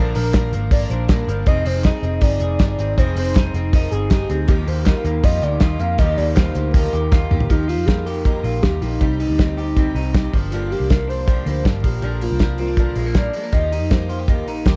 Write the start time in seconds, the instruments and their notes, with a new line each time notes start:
Already playing: picked electric bass A#1, twelve-string acoustic guitar A#2 D3 F3 A#3 D4 A#4, clean electric guitar A#3, soft synth lead A#4
0.15 picked electric bass A#1, twelve-string acoustic guitar F3 A#3 D4 A#4, soft synth lead A#4, hi-hat pedal, open hi-hat
0.33 twelve-string acoustic guitar F3 A#3 D4 A#4, kick, snare, clap, hi-hat pedal, open hi-hat
0.52 picked electric bass G#1, twelve-string acoustic guitar F3 A#3 D4 A#4, hi-hat pedal, open hi-hat
0.71 twelve-string acoustic guitar A#2 D3 F3 A#3 D4 A#4, soft synth lead D5, kick, hi-hat pedal, open hi-hat
0.89 picked electric bass A#1, twelve-string acoustic guitar F3 A#3 D4 A#4, soft synth lead C5, hi-hat pedal, open hi-hat
1.08 twelve-string acoustic guitar F3 A#3 D4 A#4, soft synth lead A#4, kick, snare, clap, hi-hat pedal, open hi-hat
1.27 picked electric bass G1, twelve-string acoustic guitar F3 A#3 D4 A#4, hi-hat pedal, open hi-hat
1.46 picked electric bass F1, twelve-string acoustic guitar F3 C4 D#4 G#4, soft synth lead D#5, kick, hi-hat pedal, open hi-hat
1.65 picked electric bass F1, twelve-string acoustic guitar C4 D#4 G#4, soft synth lead C5, hi-hat pedal, open hi-hat
1.84 twelve-string acoustic guitar F3 C4 D#4 G#4, soft synth lead D#5, kick, snare, clap, hi-hat pedal, open hi-hat
2.03 picked electric bass F1, twelve-string acoustic guitar C4 D#4 G#4, hi-hat pedal, open hi-hat
2.21 picked electric bass G1, twelve-string acoustic guitar F3 C4 D#4 G#4, soft synth lead D5, kick, hi-hat pedal, open hi-hat
2.40 picked electric bass F1, twelve-string acoustic guitar C4 D#4 G#4, hi-hat pedal, open hi-hat
2.59 picked electric bass G1, twelve-string acoustic guitar F3 C4 D#4 G#4, kick, snare, clap, hi-hat pedal, open hi-hat
2.79 picked electric bass G#1, twelve-string acoustic guitar C4 D#4 G#4, hi-hat pedal, open hi-hat
2.97 picked electric bass F1, twelve-string acoustic guitar F3 C4 D#4 G#4, soft synth lead C5, kick, hi-hat pedal, open hi-hat
3.16 picked electric bass F1, twelve-string acoustic guitar C4 D#4 G#4, soft synth lead C5, hi-hat pedal, open hi-hat
3.35 twelve-string acoustic guitar F3 C4 D#4 G#4, kick, snare, clap, hi-hat pedal, open hi-hat
3.54 picked electric bass F1, twelve-string acoustic guitar C4 D#4 G#4, hi-hat pedal, open hi-hat
3.72 twelve-string acoustic guitar F3 C4 D#4 G#4, soft synth lead A#4, kick, hi-hat pedal, open hi-hat
3.91 picked electric bass G1, twelve-string acoustic guitar C4 D#4 G#4, soft synth lead G#4, hi-hat pedal, open hi-hat
4.09 twelve-string acoustic guitar F3 C4 D#4 G#4, soft synth lead G4, kick, snare, clap, hi-hat pedal, open hi-hat
4.30 picked electric bass D2, twelve-string acoustic guitar C4 D#4 G#4, hi-hat pedal, open hi-hat
4.48 picked electric bass D#2, twelve-string acoustic guitar D#3 F3 A#3 D#4 G4, soft synth lead G4, kick, hi-hat pedal, open hi-hat
4.67 picked electric bass D#2, twelve-string acoustic guitar A#3 D#4 G4, soft synth lead C5, hi-hat pedal, open hi-hat
4.86 twelve-string acoustic guitar F3 A#3 D#4 G4, soft synth lead A#4, kick, snare, clap, hi-hat pedal, open hi-hat
4.95 clean electric guitar F4
5.04 picked electric bass D#2, twelve-string acoustic guitar A#3 D#4 G4, hi-hat pedal, open hi-hat
5.23 picked electric bass F2, twelve-string acoustic guitar D#3 F3 A#3 D#4 G4, clean electric guitar F4, soft synth lead D#5, kick, hi-hat pedal, open hi-hat
5.42 picked electric bass D2, twelve-string acoustic guitar A#3 D#4 G4, soft synth lead D5, hi-hat pedal, open hi-hat
5.60 picked electric bass D#2, twelve-string acoustic guitar F3 A#3 D#4 G4, clean electric guitar F4, soft synth lead D#5, kick, snare, clap, hi-hat pedal, open hi-hat
5.79 picked electric bass F2, twelve-string acoustic guitar A#3 D#4 G4, soft synth lead F5, hi-hat pedal, open hi-hat
5.98 picked electric bass D#2, twelve-string acoustic guitar D#3 F3 A#3 D#4 G4, soft synth lead D#5, kick, hi-hat pedal, open hi-hat
6.17 picked electric bass D#2, twelve-string acoustic guitar A#3 D#4 G4, soft synth lead D5, hi-hat pedal, open hi-hat
6.34 twelve-string acoustic guitar F3 A#3, clean electric guitar F4, soft synth lead C5, kick, snare, clap, hi-hat pedal, open hi-hat
6.39 twelve-string acoustic guitar D#4 G4
6.55 picked electric bass D2, twelve-string acoustic guitar A#3 D#4 G4, hi-hat pedal, open hi-hat
6.73 twelve-string acoustic guitar D#3 F3 A#3 D#4 G4, clean electric guitar F4, soft synth lead A#4, kick, hi-hat pedal, open hi-hat
6.93 picked electric bass D#2, twelve-string acoustic guitar A#3 D#4 G4, hi-hat pedal, open hi-hat
7.12 twelve-string acoustic guitar F3 A#3 D#4 G4, clean electric guitar F4, kick, snare, clap
7.31 picked electric bass D2, twelve-string acoustic guitar A#3 D#4 G4, mid tom
7.41 floor tom
7.50 picked electric bass D#2, twelve-string acoustic guitar D#3 F3 A#3 D#4 G4, soft synth lead D#4, kick, closed hi-hat
7.68 twelve-string acoustic guitar A#3 D#4 G4, clean electric guitar F4, soft synth lead F4, open hi-hat
7.78 picked electric bass F2
7.86 twelve-string acoustic guitar F3 A#3 D#4 G4, soft synth lead G#4, kick, snare, closed hi-hat
8.05 twelve-string acoustic guitar A#3 D#4 G4, soft synth lead A#4, open hi-hat
8.25 twelve-string acoustic guitar D#3 F3 A#3 D#4 G4, kick, closed hi-hat
8.43 picked electric bass A#1, twelve-string acoustic guitar A#3 D#4 G4, clean electric guitar F4, open hi-hat
8.62 picked electric bass D#2, twelve-string acoustic guitar F3 A#3 D#4 G4, soft synth lead G4, kick, snare, closed hi-hat
8.81 picked electric bass A#1, twelve-string acoustic guitar A#3 D#4 G4, soft synth lead D#4, clean electric guitar F4, open hi-hat
9.01 picked electric bass C2, twelve-string acoustic guitar C3 G3 C4 D#4 G4, kick, closed hi-hat
9.19 twelve-string acoustic guitar C4 D#4 G4, soft synth lead D#4, open hi-hat
9.29 picked electric bass D2
9.39 twelve-string acoustic guitar G3 C4 D#4 G4, kick, snare, closed hi-hat
9.57 twelve-string acoustic guitar C4 D#4 G4, soft synth lead D#4, open hi-hat
9.77 twelve-string acoustic guitar C3 G3 C4 D#4 G4, kick, closed hi-hat
9.95 picked electric bass C2, twelve-string acoustic guitar D#4 G4, open hi-hat
9.99 twelve-string acoustic guitar C4
10.14 twelve-string acoustic guitar G3 C4 D#4 G4, kick, snare, closed hi-hat
10.33 picked electric bass G1, twelve-string acoustic guitar F3 A#3 D4 G4, kick, open hi-hat
10.52 twelve-string acoustic guitar G2 D3 F3 A#3 D4 G4, soft synth lead F4, closed hi-hat
10.71 twelve-string acoustic guitar F3 A#3 D4 G4, soft synth lead G4, open hi-hat
10.80 picked electric bass C2
10.89 twelve-string acoustic guitar F3 A#3 D4 G4, soft synth lead A#4, kick, snare, closed hi-hat
11.09 twelve-string acoustic guitar F3 A#3 D4 G4, soft synth lead C5, open hi-hat
11.27 twelve-string acoustic guitar G2 D3 F3 A#3 D4 G4, kick, closed hi-hat
11.46 picked electric bass D2, twelve-string acoustic guitar F3 A#3 D4 G4, open hi-hat
11.65 picked electric bass G1, twelve-string acoustic guitar F3 A#3 D4 G4, soft synth lead A#4, kick, snare, closed hi-hat
11.84 picked electric bass A#1, twelve-string acoustic guitar F3 A#3 D4 A#4, soft synth lead G4, kick, open hi-hat
12.02 picked electric bass A#1, twelve-string acoustic guitar A#2 D3 F3 A#3 D4 A#4, closed hi-hat
12.21 twelve-string acoustic guitar F3 A#3 D4 A#4, soft synth lead F4, open hi-hat
12.31 picked electric bass C2
12.39 twelve-string acoustic guitar F3 A#3 D4 A#4, kick, snare, closed hi-hat
12.58 twelve-string acoustic guitar F3 A#3 D4 A#4, clean electric guitar C4, soft synth lead F4, open hi-hat
12.68 clean electric guitar D4
12.77 twelve-string acoustic guitar A#2 D3 F3 A#3 D4 A#4, kick, closed hi-hat
12.95 picked electric bass A#1, clean electric guitar G#3, twelve-string acoustic guitar A#3 D4 A#4, open hi-hat
13.00 twelve-string acoustic guitar F3
13.06 clean electric guitar A#3
13.14 twelve-string acoustic guitar F3 A#3 D4 A#4, soft synth lead D5, kick, snare, closed hi-hat
13.33 twelve-string acoustic guitar F3 A#3 D4 A#4, clean electric guitar G#3, open hi-hat
13.43 clean electric guitar A#3
13.52 picked electric bass D#2, twelve-string acoustic guitar D#3 F3 A#3 D#4 G4, soft synth lead D#5, kick, closed hi-hat
13.72 twelve-string acoustic guitar A#3 D#4 G4, open hi-hat
13.81 picked electric bass F2
13.89 twelve-string acoustic guitar F3 A#3 D#4 G4, soft synth lead C5, kick, snare, closed hi-hat
14.09 twelve-string acoustic guitar A#3 D#4 G4, clean electric guitar F4, open hi-hat
14.19 clean electric guitar G4
14.28 twelve-string acoustic guitar D#3 F3 A#3 D#4 G4, soft synth lead A#4, kick, closed hi-hat
14.46 picked electric bass A#1, twelve-string acoustic guitar A#3 D#4 G4, open hi-hat
14.64 picked electric bass D#2, twelve-string acoustic guitar F3 A#3 D#4 G4, soft synth lead A#4, kick, snare, closed hi-hat